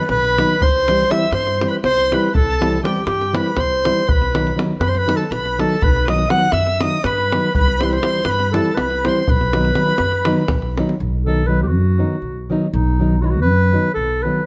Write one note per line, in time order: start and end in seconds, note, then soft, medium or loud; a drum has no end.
0.00 0.10 B4 medium
0.09 0.40 B1 medium
0.09 0.65 B4 loud
0.09 0.63 B5 loud
0.09 davul high medium
0.25 davul high soft
0.37 0.53 D#3 medium
0.37 0.54 F#3 medium
0.37 0.54 B3 medium
0.37 0.55 D#4 medium
0.37 davul high medium
0.60 1.03 C2 medium
0.60 1.13 C5 loud
0.60 1.13 C6 medium
0.60 davul low loud
0.76 davul high soft
0.88 1.03 E3 medium
0.88 1.03 G3 medium
0.88 1.03 C4 medium
0.88 1.04 E4 medium
0.88 davul high medium
1.00 davul high soft
1.10 1.25 E3 medium
1.10 1.25 G3 medium
1.10 1.26 C4 medium
1.10 1.26 E4 medium
1.10 1.33 E5 loud
1.10 1.33 E6 medium
1.10 davul high medium
1.32 1.63 G2 medium
1.32 1.66 C5 medium
1.32 1.66 C6 medium
1.32 davul high medium
1.47 davul high soft
1.60 1.76 E3 medium
1.60 1.76 G3 medium
1.60 1.77 C4 medium
1.60 1.77 E4 medium
1.60 davul high medium
1.68 1.77 B4 medium
1.68 1.75 B5 medium
1.84 2.14 C2 medium
1.84 2.15 C5 loud
1.84 2.14 C6 medium
1.84 davul high medium
1.98 davul high soft
2.11 2.27 E3 medium
2.11 2.28 G3 medium
2.11 2.28 C4 medium
2.11 2.28 E4 medium
2.11 2.35 B4 medium
2.11 2.35 B5 medium
2.11 davul high medium
2.35 2.78 C2 medium
2.35 2.80 A4 medium
2.35 2.80 A5 loud
2.35 davul low medium
2.61 2.76 E3 medium
2.61 2.76 G3 medium
2.61 2.77 C4 soft
2.61 2.77 E4 medium
2.61 davul high medium
2.73 davul high soft
2.83 2.99 E3 medium
2.83 2.99 G3 medium
2.83 2.99 C4 medium
2.83 3.00 E4 medium
2.83 3.04 G4 medium
2.83 3.05 G5 medium
2.83 davul high medium
2.96 davul high soft
3.06 3.37 G2 medium
3.06 3.36 G4 medium
3.06 3.37 G5 medium
3.06 davul high medium
3.21 davul high soft
3.33 3.49 E3 soft
3.33 3.50 G3 medium
3.33 3.50 C4 soft
3.33 3.50 E4 medium
3.33 3.59 B4 medium
3.33 3.62 B5 medium
3.33 davul high medium
3.46 davul high soft
3.57 3.88 C2 medium
3.57 4.10 C5 loud
3.57 4.13 C6 medium
3.57 davul high medium
3.57 davul low soft
3.85 4.01 E3 medium
3.85 4.01 G3 medium
3.85 4.02 C4 soft
3.85 4.02 E4 medium
3.85 davul high medium
4.08 4.51 B1 medium
4.08 4.57 B4 medium
4.08 4.58 B5 medium
4.08 davul low loud
4.22 davul high soft
4.34 4.50 D#3 medium
4.34 4.50 F#3 medium
4.34 4.50 B3 medium
4.34 4.50 D#4 medium
4.34 davul high medium
4.47 davul high soft
4.56 4.72 D#3 medium
4.56 4.72 F#3 medium
4.56 4.72 B3 soft
4.56 4.73 D#4 medium
4.56 davul high medium
4.80 5.11 F#2 medium
4.80 4.90 B4 medium
4.80 4.89 B5 medium
4.80 davul high medium
4.87 5.00 C5 medium
4.87 4.98 C6 medium
4.95 5.18 B4 loud
4.95 5.18 B5 loud
4.95 davul high soft
5.06 5.23 D#3 medium
5.06 5.23 F#3 medium
5.06 5.23 B3 medium
5.06 5.24 D#4 medium
5.06 davul high medium
5.16 5.33 A4 medium
5.16 5.32 A5 medium
5.30 5.62 B1 medium
5.30 5.62 B4 medium
5.30 5.61 B5 medium
5.30 davul high medium
5.46 davul high soft
5.58 5.75 D#3 medium
5.58 5.75 F#3 soft
5.58 5.75 B3 soft
5.58 5.75 D#4 medium
5.58 5.86 A4 medium
5.58 5.83 A5 medium
5.58 davul high medium
5.82 6.25 B1 medium
5.82 6.09 B4 medium
5.82 6.07 B5 medium
5.82 davul low medium
5.96 davul high soft
6.08 6.23 D#3 medium
6.08 6.23 F#3 medium
6.08 6.24 B3 soft
6.08 6.24 D#4 medium
6.08 6.31 D#5 medium
6.08 6.32 D#6 medium
6.08 davul high medium
6.19 davul high soft
6.30 6.46 D#3 medium
6.30 6.46 F#3 medium
6.30 6.46 B3 medium
6.30 6.47 D#4 medium
6.30 6.54 F#5 loud
6.30 6.55 F#6 medium
6.30 davul high medium
6.52 6.83 F#2 medium
6.52 6.83 E5 medium
6.52 6.83 E6 medium
6.52 davul high medium
6.67 davul high soft
6.80 6.97 D#3 medium
6.80 6.97 F#3 soft
6.80 6.97 B3 soft
6.80 6.97 D#4 medium
6.80 7.06 D#5 medium
6.80 7.07 D#6 medium
6.80 davul high medium
7.04 7.35 G2 medium
7.04 7.54 B4 loud
7.04 7.56 B5 medium
7.04 davul high medium
7.18 davul high soft
7.32 7.48 D#3 medium
7.32 7.48 F#3 medium
7.32 7.49 B3 soft
7.32 7.49 D#4 medium
7.32 davul high medium
7.55 7.98 C2 medium
7.55 7.81 B4 medium
7.55 7.84 B5 loud
7.55 davul low medium
7.68 davul high soft
7.79 7.96 E3 medium
7.79 7.97 G3 medium
7.79 7.97 C4 medium
7.79 7.97 E4 medium
7.79 7.86 C5 medium
7.79 7.91 C6 medium
7.79 davul high medium
7.85 7.94 B4 medium
7.89 8.26 C5 medium
7.89 7.99 B5 medium
7.89 davul high soft
7.98 8.31 C6 medium
8.03 8.19 E3 medium
8.03 8.19 G3 medium
8.03 8.19 C4 soft
8.03 8.20 E4 medium
8.03 davul high medium
8.25 8.56 G2 medium
8.25 8.51 B4 loud
8.25 davul high medium
8.29 8.56 B5 medium
8.40 davul high soft
8.52 8.70 E3 medium
8.52 8.70 G3 medium
8.52 8.70 C4 soft
8.52 8.70 E4 medium
8.52 8.76 A4 medium
8.52 davul high medium
8.56 8.80 A5 medium
8.75 9.08 C2 medium
8.75 9.06 B4 medium
8.75 9.10 B5 medium
8.75 davul high medium
8.90 davul high soft
9.04 9.21 E3 medium
9.04 9.21 G3 soft
9.04 9.22 C4 medium
9.04 9.21 E4 medium
9.04 9.20 C5 medium
9.04 davul high medium
9.09 9.22 C6 medium
9.20 9.30 C5 medium
9.20 9.32 C6 medium
9.28 9.71 B1 medium
9.28 10.78 B4 medium
9.28 10.79 B5 medium
9.28 davul low medium
9.41 davul high soft
9.53 9.69 D#3 medium
9.53 9.70 F#3 medium
9.53 9.70 B3 medium
9.53 9.70 D#4 medium
9.53 davul high medium
9.65 davul high soft
9.75 9.91 D#3 medium
9.75 9.92 F#3 medium
9.75 9.92 B3 soft
9.75 9.92 D#4 medium
9.75 davul high medium
9.87 davul high soft
9.98 10.30 F#2 medium
9.98 davul high medium
10.12 davul high soft
10.25 10.42 D#3 medium
10.25 10.42 F#3 medium
10.25 10.42 B3 medium
10.25 10.43 D#4 medium
10.25 davul high medium
10.48 10.80 B1 medium
10.48 davul high medium
10.48 davul low medium
10.62 davul high soft
10.78 10.94 D#3 medium
10.78 10.94 F#3 medium
10.78 10.94 B3 medium
10.78 10.94 D#4 medium
10.78 davul high medium
10.89 davul high soft
11.00 11.71 B1 medium
11.26 11.42 D#3 medium
11.26 11.42 F#3 medium
11.26 11.43 B3 soft
11.26 11.43 D#4 medium
11.26 11.49 A4 medium
11.47 11.64 D#3 medium
11.47 11.64 F#3 medium
11.47 11.64 B3 soft
11.47 11.65 D#4 medium
11.47 11.62 B4 medium
11.63 11.69 G4 soft
11.68 12.02 F#2 medium
11.68 12.49 F#4 medium
11.98 12.15 D#3 medium
11.98 12.15 F#3 soft
11.98 12.15 B3 soft
11.98 12.16 D#4 medium
12.22 12.52 B1 medium
12.50 12.66 D#3 medium
12.50 12.66 F#3 medium
12.50 12.67 B3 soft
12.50 12.67 D#4 medium
12.73 13.44 B1 medium
12.73 13.23 D#4 medium
12.99 13.15 D#3 medium
12.99 13.15 F#3 medium
12.99 13.15 B3 medium
12.99 13.16 D#4 medium
13.22 13.37 D#3 soft
13.22 13.37 F#3 soft
13.22 13.38 B3 soft
13.22 13.38 D#4 medium
13.22 13.27 F#4 medium
13.26 13.32 E4 medium
13.30 13.41 F#4 medium
13.42 13.75 F#2 medium
13.42 13.90 B4 loud
13.72 13.88 D#3 medium
13.72 13.88 F#3 medium
13.72 13.88 B3 medium
13.72 13.89 D#4 medium
13.95 14.26 B1 medium
13.95 14.24 A4 medium
14.23 14.39 D#3 medium
14.23 14.40 F#3 medium
14.23 14.40 B3 medium
14.23 14.40 D#4 medium
14.23 14.46 B4 medium